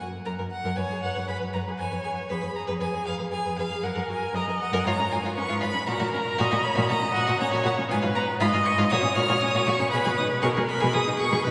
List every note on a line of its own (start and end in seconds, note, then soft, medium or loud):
0.00 0.06 F#2 medium
0.00 0.06 F#4 medium
0.00 0.08 G#5 medium
0.25 0.31 F#2 medium
0.25 0.31 A#4 medium
0.25 0.33 A#5 medium
0.39 0.44 F#2 medium
0.39 0.44 A#4 medium
0.51 0.78 F#5 loud
0.65 0.70 F#2 loud
0.65 0.70 A#4 medium
0.76 0.83 F#2 medium
0.76 0.82 B4 medium
0.76 1.30 C#5 loud
0.76 1.03 G#5 loud
0.90 0.95 F#2 medium
0.90 0.96 G#4 medium
1.03 1.08 F#2 medium
1.03 1.08 B4 medium
1.03 1.28 F#5 loud
1.15 1.22 F#2 medium
1.15 1.20 B4 medium
1.27 1.34 F#2 medium
1.27 1.33 G#4 medium
1.27 1.82 B4 medium
1.27 1.36 B5 loud
1.39 1.47 F#2 medium
1.39 1.45 B4 medium
1.53 1.60 F#2 medium
1.53 1.60 B4 medium
1.53 1.61 A#5 medium
1.67 1.73 F#2 medium
1.67 1.73 G#4 medium
1.78 1.85 F2 loud
1.78 1.86 B4 medium
1.78 2.33 C#5 medium
1.78 2.03 G#5 loud
1.92 1.98 F2 medium
1.92 1.97 B4 medium
2.04 2.10 F2 medium
2.04 2.09 G#4 medium
2.04 2.12 G#5 loud
2.29 2.36 F2 loud
2.29 3.32 G#4 medium
2.29 2.35 B4 medium
2.29 2.55 B5 loud
2.41 2.48 F2 medium
2.41 2.47 B4 medium
2.56 2.64 A#5 loud
2.67 2.74 F2 loud
2.67 2.73 B4 loud
2.80 2.86 F2 medium
2.80 2.86 B4 medium
2.80 3.06 G#5 loud
2.93 2.99 F2 medium
2.93 2.99 G#4 medium
3.06 3.12 F2 medium
3.06 3.12 B4 medium
3.06 3.14 F5 loud
3.19 3.25 F2 medium
3.19 3.25 B4 medium
3.31 3.37 F2 medium
3.31 3.38 G#4 medium
3.31 3.85 G#4 medium
3.31 3.57 G#5 loud
3.45 3.51 F2 medium
3.45 3.50 B4 medium
3.59 3.64 F2 medium
3.59 3.64 B4 medium
3.59 3.85 F5 loud
3.70 3.75 F2 medium
3.70 3.76 G#4 medium
3.83 3.88 F#2 loud
3.83 3.88 A#4 loud
3.83 4.36 A#4 medium
3.83 4.09 F#5 loud
3.95 4.02 F#2 medium
3.95 4.01 A#4 medium
4.08 4.14 F#2 medium
4.08 4.14 F#4 medium
4.08 4.35 G#5 loud
4.33 4.39 F#2 loud
4.33 4.41 A#4 medium
4.33 4.88 D#5 loud
4.33 4.44 A#5 loud
4.47 4.53 F#2 medium
4.47 4.54 A#4 medium
4.61 4.87 F#5 loud
4.72 4.78 F#2 loud
4.72 4.78 A#4 loud
4.85 4.91 G#2 medium
4.85 4.92 F4 medium
4.85 5.36 C#5 medium
4.85 5.13 A#5 loud
4.98 5.03 G#2 medium
4.98 5.04 C#4 medium
5.11 5.16 G#2 loud
5.11 5.17 F4 loud
5.11 5.35 G#5 loud
5.23 5.29 G#2 medium
5.23 5.30 F4 medium
5.36 5.42 G#2 medium
5.36 5.42 C#4 loud
5.36 5.87 B4 medium
5.36 5.61 C#6 loud
5.49 5.55 G#2 loud
5.49 5.54 F4 loud
5.61 5.68 G#2 medium
5.61 5.66 F4 medium
5.61 5.89 B5 loud
5.74 5.80 G#2 medium
5.74 5.79 C#4 medium
5.86 5.93 A#2 loud
5.86 5.92 F#4 loud
5.86 6.41 A#4 loud
5.86 6.12 A#5 loud
6.00 6.06 A#2 medium
6.00 6.05 F#4 medium
6.13 6.19 A#2 medium
6.13 6.18 C#4 medium
6.13 6.65 A#5 loud
6.38 6.45 A#2 loud
6.38 6.44 F#4 loud
6.38 6.67 D#5 loud
6.51 6.57 A#2 medium
6.51 6.56 F#4 medium
6.63 6.92 C#5 loud
6.63 6.88 B5 loud
6.75 6.83 A#2 loud
6.75 6.81 F#4 loud
6.89 6.96 A#2 medium
6.89 6.94 F#4 medium
6.89 7.40 D#5 loud
6.89 7.13 A#5 loud
7.02 7.09 A#2 medium
7.02 7.07 C#4 medium
7.14 7.21 A#2 loud
7.14 7.20 F#4 loud
7.14 7.40 F#5 loud
7.27 7.34 A#2 medium
7.27 7.32 F#4 medium
7.40 7.46 A#2 medium
7.40 7.45 C#4 loud
7.40 7.90 C#5 loud
7.40 7.48 A#5 loud
7.51 7.59 A#2 loud
7.51 7.57 F#4 loud
7.63 7.71 A#2 medium
7.63 7.69 F#4 medium
7.63 7.74 F#5 loud
7.77 7.83 A#2 medium
7.77 7.83 C#4 medium
7.89 7.96 G#2 loud
7.89 7.94 F4 loud
7.89 8.40 B4 loud
7.89 7.99 G#5 loud
8.02 8.09 G#2 medium
8.02 8.07 F4 medium
8.15 8.21 G#2 medium
8.15 8.21 B3 medium
8.15 8.23 A#5 loud
8.40 8.46 G#2 loud
8.40 8.46 F4 loud
8.40 8.93 D#5 loud
8.40 8.48 B5 loud
8.54 8.59 G#2 medium
8.54 8.59 F4 medium
8.65 8.73 C#6 loud
8.78 8.83 G#2 loud
8.78 8.83 F4 loud
8.90 8.97 A#2 medium
8.90 8.97 F#4 loud
8.90 9.91 C#5 loud
8.90 9.17 D#6 loud
9.02 9.09 A#2 medium
9.02 9.08 C#4 loud
9.15 9.22 A#2 loud
9.15 9.21 F#4 loud
9.15 9.43 F6 loud
9.29 9.35 A#2 medium
9.29 9.34 F#4 medium
9.41 9.48 A#2 medium
9.41 9.47 C#4 loud
9.41 9.68 D#6 loud
9.54 9.60 A#2 loud
9.54 9.60 F#4 loud
9.67 9.72 A#2 medium
9.67 9.73 F#4 loud
9.67 9.90 C#6 loud
9.79 9.86 A#2 loud
9.79 9.84 C#4 loud
9.91 9.98 B2 loud
9.91 9.97 G#4 loud
9.91 10.45 B4 loud
9.91 10.16 B5 loud
10.04 10.11 B2 medium
10.04 10.10 G#4 medium
10.17 10.24 B2 loud
10.17 10.24 D#4 medium
10.17 10.25 D#6 loud
10.42 10.49 B2 loud
10.42 10.47 G#4 loud
10.42 10.96 A#4 loud
10.42 10.50 C#6 loud
10.57 10.62 B2 loud
10.57 10.61 G#4 loud
10.68 10.95 B5 loud
10.80 10.88 B2 loud
10.80 10.85 G#4 loud
10.94 11.00 B2 medium
10.94 10.99 G#4 loud
10.94 11.46 G#4 loud
10.94 11.19 D#6 loud
11.07 11.14 B2 medium
11.07 11.12 D#4 medium
11.18 11.26 B2 loud
11.18 11.23 G#4 loud
11.18 11.44 C#6 loud
11.32 11.37 B2 medium
11.32 11.37 G#4 medium
11.44 11.51 B2 loud
11.44 11.51 D#4 loud
11.44 11.51 B4 loud
11.44 11.51 B5 loud